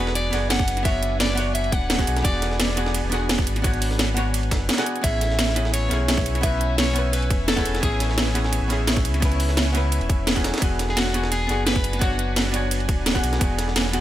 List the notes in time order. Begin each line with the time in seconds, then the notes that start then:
Already playing: E1 B3 D4 B4 F#5 G#5
0.00 F#4 G#4
0.07 snare
0.15 D5, snare, closed hi-hat, ride
0.31 F#1 B3 D4 F#4, snare, closed hi-hat, ride
0.35 G#4
0.50 F#5, snare, closed hi-hat, ride
0.59 kick, closed hi-hat
0.68 closed hi-hat, ride
0.77 snare, closed hi-hat, ride
0.83 B3 D4 F#4 E5, kick, closed hi-hat, ride
0.87 C#5
1.03 closed hi-hat
1.20 D5, snare, closed hi-hat, ride
1.35 B3 D4 F#4, closed hi-hat, ride
1.40 C#5
1.55 E5, closed hi-hat, ride
1.64 ride
1.72 D1 F#5, kick, closed hi-hat, ride
1.90 snare, closed hi-hat, ride
1.98 B3 D4 F#4 G#4, kick, closed hi-hat
2.07 B1, closed hi-hat, ride
2.16 snare, closed hi-hat
2.22 E1 B3 D4 F#4 D5, kick, closed hi-hat, ride
2.27 G#4
2.42 snare, closed hi-hat, ride
2.51 snare
2.60 snare, closed hi-hat, ride
2.69 snare
2.76 B3 D4 F#4 G#4, snare, closed hi-hat, ride
2.86 snare
2.94 snare, closed hi-hat, ride
3.04 E1
3.10 B3 D4 F#4, snare, closed hi-hat, ride
3.14 G#4
3.29 snare, closed hi-hat, ride
3.39 kick, closed hi-hat
3.47 G#1, closed hi-hat, ride
3.56 snare, closed hi-hat, ride
3.62 B3 D4 F#4, kick, closed hi-hat, ride
3.67 C#5
3.74 closed hi-hat
3.82 closed hi-hat, open hi-hat
3.91 snare
3.99 snare, closed hi-hat, ride
4.08 snare
4.14 B3 D4 F#4, snare, closed hi-hat, ride
4.19 C#5
4.34 closed hi-hat, ride
4.43 ride
4.51 F#1, kick, snare, closed hi-hat, ride
4.69 snare, closed hi-hat, ride
4.73 B3, snare, ride
4.78 D4 F#4 G#4, snare, closed hi-hat, ride
4.86 closed hi-hat
4.96 closed hi-hat
5.01 A1 B3 C#4 E4 B4 C#5 E5 G#5, kick, closed hi-hat, ride
5.06 G#4
5.21 snare, closed hi-hat, ride
5.30 snare
5.39 snare, closed hi-hat, ride
5.48 snare
5.55 B3 C#4 E4 G#4, snare, closed hi-hat, ride
5.65 snare
5.74 C#5, snare, closed hi-hat, ride
5.89 B1 B3 C#4 E4, snare, closed hi-hat, ride
5.93 G#4
6.08 snare, closed hi-hat, ride
6.18 kick, closed hi-hat
6.26 closed hi-hat, ride
6.35 snare, closed hi-hat, ride
6.41 B3 C#4 E4 E5, kick, closed hi-hat, ride
6.46 B4
6.61 closed hi-hat
6.78 C#5, snare, closed hi-hat, ride
6.93 B3 C#4 E4, closed hi-hat, ride
6.98 B4
7.13 B4, closed hi-hat, ride
7.22 ride
7.30 E1, kick, closed hi-hat, ride
7.48 A4, snare, closed hi-hat, ride
7.56 B3 C#4 E4 G#4, kick, closed hi-hat
7.65 E1, closed hi-hat, ride
7.75 snare, closed hi-hat
7.80 A1 B3 C#4 E4 G#4, kick, closed hi-hat, ride
7.85 G#4
8.00 snare, closed hi-hat, ride
8.10 snare
8.18 snare, closed hi-hat, ride
8.27 snare
8.34 B3 C#4 E4 G#4, snare, closed hi-hat, ride
8.44 snare
8.53 snare, closed hi-hat, ride
8.62 A1
8.68 B3 C#4 E4, snare, closed hi-hat, ride
8.72 G#4
8.87 snare, closed hi-hat, ride
8.97 kick, closed hi-hat
9.05 C#2, closed hi-hat, ride
9.14 snare, closed hi-hat, ride
9.20 B3 C#4 E4, kick, closed hi-hat, ride
9.25 B4
9.32 closed hi-hat
9.40 closed hi-hat, open hi-hat
9.49 snare
9.57 snare, closed hi-hat, ride
9.72 B3 C#4 E4, snare, closed hi-hat, ride
9.77 B4
9.92 closed hi-hat, ride
10.01 E1, ride
10.10 kick, closed hi-hat, ride
10.27 snare, closed hi-hat, ride
10.35 B3 C#4 E4 G#4, kick, closed hi-hat
10.44 snare, closed hi-hat, ride
10.54 snare, closed hi-hat, ride
10.58 B3 D4, snare, ride
10.62 E1 D4 F#4 G#4 F#5 G#5, kick, closed hi-hat, ride
10.79 snare, closed hi-hat, ride
10.89 G#4, snare
10.97 F#4, snare, closed hi-hat, ride
11.06 snare
11.13 B3 D4 F#4 G#4, snare, closed hi-hat, ride
11.23 snare
11.32 G#4, snare, closed hi-hat, ride
11.47 F#1 B3 D4 F#4, snare, closed hi-hat, ride
11.52 G#4
11.67 B4, snare, closed hi-hat, ride
11.76 kick, closed hi-hat
11.84 closed hi-hat, ride
11.93 snare, closed hi-hat, ride
11.99 B3 D4 F#4, kick, closed hi-hat, ride
12.04 C#5
12.19 closed hi-hat
12.36 snare, closed hi-hat, ride
12.52 B3 D4 F#4, closed hi-hat, ride
12.56 C#5
12.71 closed hi-hat, ride
12.80 ride
12.89 D1, kick, closed hi-hat, ride
13.06 snare, closed hi-hat, ride
13.14 B3 D4 F#4 G#4, kick, closed hi-hat
13.23 B1, closed hi-hat, ride
13.33 snare, closed hi-hat
13.39 E1 B3 D4 F#4, kick, closed hi-hat, ride
13.43 G#4
13.59 snare, closed hi-hat, ride
13.68 snare
13.76 snare, closed hi-hat, ride
13.85 snare
13.92 B3 D4 F#4 G#4, snare, closed hi-hat, ride